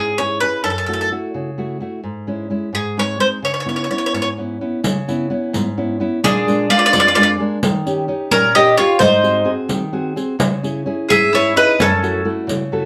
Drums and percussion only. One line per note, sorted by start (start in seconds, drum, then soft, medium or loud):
4.84 riq medium
5.09 riq soft
5.54 riq soft
6.24 riq medium
6.48 riq soft
6.94 riq soft
7.63 riq medium
7.87 riq soft
8.31 riq soft
9.00 riq medium
9.24 riq soft
9.69 riq soft
10.17 riq soft
10.40 riq medium
10.64 riq soft
11.11 riq soft
11.80 riq medium
12.04 riq soft
12.49 riq soft